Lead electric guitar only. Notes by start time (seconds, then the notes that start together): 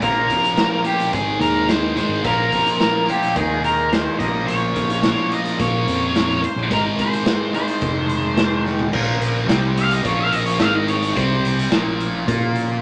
0.03 A#4
0.86 G4
1.13 G#4
1.41 A#4
1.69 C5
1.98 C5
2.25 A#4
3.10 G4
3.38 G#4
3.65 A#4
3.93 C5
4.19 D#5
4.47 C#5
5.33 D#5
5.60 C#5
6.45 C5
6.73 A#4
7.01 C5
7.54 C5
9.79 F5
9.93 D#5
10.06 C#5
10.20 F5
10.32 D#5
10.46 C#5
10.59 F5
10.76 D#5
10.89 C#5
11.17 C5